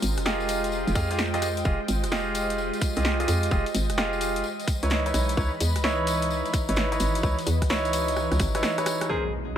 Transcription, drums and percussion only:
0.02 open hi-hat loud
0.02 tambourine medium
0.17 cross-stick medium
0.17 closed hi-hat medium
0.17 tambourine soft
0.26 snare loud
0.26 tambourine medium
0.40 tambourine soft
0.49 open hi-hat loud
0.49 tambourine medium
0.64 closed hi-hat medium
0.64 tambourine soft
0.72 tambourine medium
0.87 closed hi-hat soft
0.87 tambourine soft
0.95 kick loud
0.95 open hi-hat loud
0.95 tambourine medium
1.11 closed hi-hat medium
1.11 tambourine soft
1.19 snare loud
1.19 tambourine medium
1.34 closed hi-hat soft
1.34 tambourine soft
1.42 cross-stick medium
1.42 open hi-hat loud
1.42 tambourine medium
1.57 closed hi-hat medium
1.57 tambourine soft
1.65 kick loud
1.65 tambourine medium
1.88 open hi-hat loud
1.88 tambourine medium
2.03 cross-stick soft
2.03 closed hi-hat medium
2.03 tambourine soft
2.12 snare loud
2.12 tambourine soft
2.35 open hi-hat loud
2.35 tambourine loud
2.50 closed hi-hat medium
2.50 tambourine soft
2.58 tambourine soft
2.73 closed hi-hat soft
2.73 tambourine soft
2.81 kick loud
2.81 open hi-hat loud
2.81 tambourine medium
2.96 closed hi-hat medium
2.96 tambourine soft
3.05 snare loud
3.05 tambourine medium
3.20 closed hi-hat medium
3.20 tambourine soft
3.28 open hi-hat loud
3.28 tambourine medium
3.43 closed hi-hat medium
3.43 tambourine soft
3.51 kick loud
3.51 tambourine medium
3.66 open hi-hat medium
3.66 tambourine soft
3.74 open hi-hat loud
3.74 tambourine medium
3.90 cross-stick soft
3.90 closed hi-hat medium
3.90 tambourine soft
3.98 snare loud
3.98 tambourine soft
4.13 tambourine soft
4.21 open hi-hat loud
4.21 tambourine medium
4.36 closed hi-hat medium
4.36 tambourine soft
4.44 tambourine medium
4.60 closed hi-hat soft
4.60 tambourine soft
4.68 kick loud
4.68 open hi-hat loud
4.68 tambourine medium
4.83 closed hi-hat medium
4.83 tambourine soft
4.90 snare loud
4.90 tambourine soft
5.06 closed hi-hat medium
5.06 tambourine soft
5.14 cross-stick medium
5.14 open hi-hat loud
5.14 tambourine medium
5.29 closed hi-hat medium
5.29 tambourine soft
5.37 kick loud
5.37 tambourine soft
5.60 open hi-hat loud
5.60 tambourine medium
5.76 cross-stick medium
5.76 closed hi-hat medium
5.76 tambourine soft
5.84 snare loud
5.84 tambourine soft
6.07 open hi-hat loud
6.07 tambourine medium
6.22 closed hi-hat medium
6.22 tambourine soft
6.30 tambourine medium
6.45 closed hi-hat soft
6.45 tambourine soft
6.54 kick loud
6.54 open hi-hat loud
6.54 tambourine medium
6.68 closed hi-hat medium
6.68 tambourine soft
6.76 snare loud
6.76 tambourine soft
6.92 closed hi-hat medium
6.92 tambourine soft
7.00 open hi-hat loud
7.00 tambourine medium
7.15 closed hi-hat medium
7.15 tambourine soft
7.23 kick loud
7.23 tambourine medium
7.39 open hi-hat medium
7.39 tambourine soft
7.47 open hi-hat loud
7.47 tambourine loud
7.62 kick medium
7.62 cross-stick medium
7.62 closed hi-hat medium
7.62 tambourine soft
7.69 snare loud
7.69 tambourine soft
7.85 closed hi-hat soft
7.85 tambourine soft
7.93 open hi-hat loud
7.93 tambourine medium
8.08 closed hi-hat medium
8.08 tambourine soft
8.16 cross-stick medium
8.16 tambourine medium
8.31 cross-stick medium
8.31 closed hi-hat soft
8.31 tambourine soft
8.40 kick loud
8.40 cross-stick medium
8.40 open hi-hat loud
8.40 tambourine medium
8.55 cross-stick medium
8.55 closed hi-hat medium
8.55 tambourine soft
8.63 cross-stick medium
8.63 snare loud
8.63 tambourine medium
8.78 cross-stick medium
8.78 closed hi-hat medium
8.78 tambourine soft
8.86 cross-stick loud
8.86 open hi-hat loud
8.86 tambourine medium
9.01 cross-stick medium
9.01 closed hi-hat medium
9.01 tambourine soft

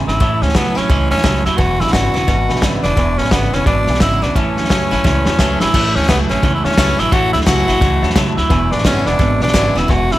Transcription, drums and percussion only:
0.08 snare soft
0.21 kick loud
0.21 snare soft
0.42 snare soft
0.49 snare soft
0.55 kick medium
0.55 snare loud
0.55 hi-hat pedal medium
0.76 snare soft
0.89 kick loud
0.89 snare soft
1.11 snare soft
1.17 snare soft
1.24 kick medium
1.24 snare loud
1.24 hi-hat pedal medium
1.45 snare soft
1.59 kick loud
1.59 snare soft
1.80 snare soft
1.87 snare soft
1.93 kick medium
1.93 snare loud
1.93 hi-hat pedal medium
2.15 snare soft
2.28 kick loud
2.28 snare soft
2.49 snare soft
2.55 snare soft
2.62 kick medium
2.62 snare loud
2.62 hi-hat pedal medium
2.83 snare soft
2.96 kick loud
2.96 snare soft
3.18 snare soft
3.24 snare soft
3.31 kick medium
3.31 snare loud
3.31 hi-hat pedal medium
3.53 snare soft
3.65 kick loud
3.65 snare soft
3.87 snare soft
3.94 snare soft
4.00 kick medium
4.00 snare loud
4.00 hi-hat pedal medium
4.22 snare soft
4.35 kick loud
4.35 snare soft
4.57 snare soft
4.64 snare soft
4.70 kick medium
4.70 snare loud
4.70 hi-hat pedal medium
4.91 snare soft
5.05 kick loud
5.05 snare medium
5.26 snare medium
5.39 kick medium
5.39 snare medium
5.39 hi-hat pedal medium
5.60 snare medium
5.74 kick loud
5.74 snare soft
5.74 crash medium
5.96 snare soft
6.02 snare soft
6.09 kick medium
6.09 snare loud
6.09 hi-hat pedal medium
6.30 snare soft
6.43 kick loud
6.43 snare soft
6.65 snare soft
6.71 snare soft
6.78 kick medium
6.78 snare loud
6.78 hi-hat pedal medium
6.99 snare soft
7.12 kick loud
7.12 snare soft
7.33 snare soft
7.41 snare soft
7.47 kick medium
7.47 snare loud
7.47 hi-hat pedal medium
7.68 snare soft
7.81 kick loud
7.81 snare soft
8.03 snare soft
8.10 snare soft
8.16 kick medium
8.16 snare loud
8.16 hi-hat pedal medium
8.37 snare soft
8.50 kick loud
8.50 snare soft
8.71 snare soft
8.78 snare soft
8.85 kick medium
8.85 snare loud
8.85 hi-hat pedal medium
9.06 snare soft
9.19 kick loud
9.19 snare soft
9.41 snare soft
9.47 snare soft
9.54 kick medium
9.54 snare loud
9.54 hi-hat pedal medium
9.76 snare soft
9.89 kick loud
9.89 snare soft
10.11 snare soft

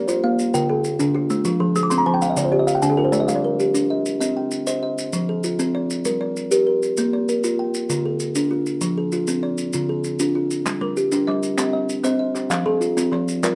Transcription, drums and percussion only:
0.08 maracas medium
0.39 maracas medium
0.54 maracas medium
0.84 maracas medium
1.00 maracas medium
1.30 maracas medium
1.45 maracas medium
1.76 maracas medium
1.91 maracas medium
2.22 maracas medium
2.37 maracas medium
2.68 maracas medium
2.82 maracas medium
3.13 maracas medium
3.29 maracas medium
3.60 maracas medium
3.75 maracas medium
4.06 maracas medium
4.21 maracas medium
4.51 maracas medium
4.67 maracas medium
4.98 maracas medium
5.13 maracas medium
5.44 maracas medium
5.59 maracas medium
5.90 maracas medium
6.05 maracas medium
6.37 maracas medium
6.51 maracas medium
6.83 maracas soft
6.97 maracas medium
7.29 maracas medium
7.44 maracas medium
7.74 maracas medium
7.90 maracas medium
8.20 maracas medium
8.35 maracas medium
8.66 maracas soft
8.81 maracas medium
9.12 maracas medium
9.27 maracas medium
9.58 maracas medium
9.73 maracas medium
10.04 maracas medium
10.19 maracas medium
10.51 maracas soft
10.66 clap medium
10.66 maracas medium
10.97 maracas medium
11.12 clap soft
11.12 maracas medium
11.28 clap soft
11.43 maracas soft
11.58 clap soft
11.58 maracas medium
11.89 maracas soft
12.04 clap soft
12.04 maracas medium
12.36 clap soft
12.36 maracas soft
12.50 clap medium
12.50 maracas medium
12.82 maracas soft
12.97 clap soft
12.97 maracas medium
13.14 clap soft
13.28 maracas soft
13.43 clap medium
13.43 maracas medium

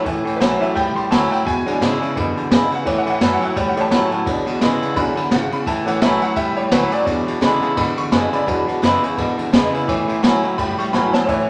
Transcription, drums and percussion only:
0.06 kick loud
0.06 ride medium
0.27 ride medium
0.41 snare loud
0.41 ride medium
0.62 ride medium
0.76 kick loud
0.76 ride medium
0.97 ride medium
1.12 snare loud
1.12 ride loud
1.33 ride medium
1.47 kick loud
1.47 ride medium
1.67 ride medium
1.82 snare loud
1.82 ride medium
2.02 ride medium
2.17 kick loud
2.17 ride medium
2.37 ride medium
2.51 snare loud
2.51 ride medium
2.72 ride medium
2.86 kick loud
2.86 ride medium
3.06 ride medium
3.21 snare loud
3.21 ride medium
3.42 ride medium
3.56 kick loud
3.56 ride medium
3.77 ride medium
3.91 snare loud
3.91 ride medium
4.11 ride medium
4.26 kick loud
4.26 ride medium
4.47 ride medium
4.61 snare loud
4.61 ride medium
4.82 ride medium
4.96 kick loud
4.96 ride medium
5.17 ride medium
5.31 snare loud
5.31 ride medium
5.52 ride medium
5.67 kick loud
5.67 ride medium
5.87 ride medium
6.02 snare loud
6.02 ride medium
6.22 ride medium
6.36 kick loud
6.36 ride medium
6.57 ride medium
6.71 snare loud
6.71 ride loud
6.92 ride medium
7.07 kick loud
7.07 ride loud
7.28 ride medium
7.42 snare loud
7.42 ride loud
7.62 ride medium
7.77 kick loud
7.77 ride loud
7.97 ride medium
8.12 snare loud
8.12 ride medium
8.33 ride medium
8.47 kick loud
8.47 ride medium
8.68 ride medium
8.83 snare loud
8.83 ride medium
9.04 ride medium
9.18 kick loud
9.18 ride medium
9.39 ride medium
9.53 snare loud
9.53 ride medium
9.74 ride medium
9.88 kick loud
9.88 ride medium
10.09 ride medium
10.24 snare loud
10.24 ride loud
10.44 ride medium
10.59 kick loud
10.59 ride medium
10.80 ride medium
10.94 snare medium
11.14 snare medium
11.28 kick loud
11.28 ride medium

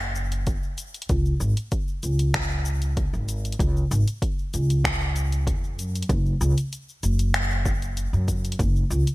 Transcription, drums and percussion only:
0.01 shaker soft
0.15 shaker medium
0.32 closed hi-hat soft
0.32 shaker soft
0.47 kick loud
0.47 closed hi-hat medium
0.47 shaker soft
0.63 shaker soft
0.78 closed hi-hat soft
0.78 shaker medium
0.94 closed hi-hat soft
0.94 shaker soft
1.02 closed hi-hat medium
1.09 kick loud
1.09 closed hi-hat medium
1.09 shaker soft
1.25 shaker soft
1.40 shaker medium
1.57 closed hi-hat soft
1.57 shaker soft
1.72 kick loud
1.72 closed hi-hat medium
1.72 shaker soft
1.88 shaker soft
2.03 closed hi-hat soft
2.03 shaker medium
2.19 closed hi-hat soft
2.19 shaker soft
2.34 finger snap medium
2.34 kick loud
2.34 closed hi-hat medium
2.34 shaker soft
2.50 shaker soft
2.65 shaker medium
2.82 closed hi-hat soft
2.82 shaker soft
2.97 kick loud
2.97 closed hi-hat medium
2.97 shaker soft
3.13 shaker soft
3.29 closed hi-hat soft
3.29 shaker medium
3.45 closed hi-hat soft
3.45 shaker soft
3.52 closed hi-hat medium
3.59 kick loud
3.59 closed hi-hat medium
3.59 shaker soft
3.77 shaker soft
3.91 closed hi-hat soft
3.91 shaker medium
4.08 closed hi-hat soft
4.08 shaker soft
4.22 kick loud
4.22 closed hi-hat medium
4.22 shaker soft
4.39 shaker soft
4.54 closed hi-hat soft
4.54 shaker medium
4.70 closed hi-hat soft
4.70 shaker soft
4.84 finger snap medium
4.84 kick loud
4.84 closed hi-hat medium
4.84 shaker soft
5.01 shaker soft
5.16 closed hi-hat soft
5.16 shaker medium
5.32 closed hi-hat soft
5.32 shaker soft
5.47 kick medium
5.47 closed hi-hat medium
5.47 shaker soft
5.64 shaker soft
5.79 closed hi-hat soft
5.79 shaker medium
5.95 closed hi-hat soft
5.95 shaker soft
6.02 closed hi-hat medium
6.09 kick loud
6.09 closed hi-hat medium
6.09 shaker soft
6.26 shaker soft
6.41 shaker medium
6.58 closed hi-hat soft
6.58 shaker soft
6.73 closed hi-hat medium
6.73 shaker soft
6.89 shaker soft
7.03 closed hi-hat soft
7.03 shaker medium
7.19 closed hi-hat soft
7.19 shaker soft
7.34 finger snap medium
7.34 closed hi-hat medium
7.34 shaker soft
7.51 shaker soft
7.66 kick loud
7.66 shaker medium
7.82 closed hi-hat soft
7.82 shaker soft
7.97 closed hi-hat medium
7.97 shaker soft
8.14 shaker soft
8.28 kick medium
8.28 closed hi-hat soft
8.28 shaker medium
8.45 closed hi-hat soft
8.45 shaker soft
8.52 closed hi-hat medium
8.59 kick loud
8.59 closed hi-hat medium
8.59 shaker soft
8.76 shaker soft
8.91 shaker medium
9.07 closed hi-hat soft
9.07 shaker soft

